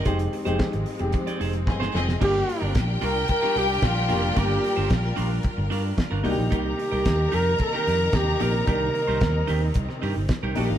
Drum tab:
CC |----------------|x---------------|----------------|----------------|
HH |xxox-xoxxxox----|--o-x-o-x-o-x-o-|x-o-x-o-x-o-x-o-|x-o-x-o-x-o-x-o-|
SD |----o-------oooo|----o----o--o---|----o-------o---|----o----o--o---|
BD |o---o---o---o---|o---o---o---o---|o---o---o---o---|o---o---o---o---|

CC |----------------|
HH |x-o-x-o-x-o-x-o-|
SD |----o----o--o---|
BD |o---o---o---o---|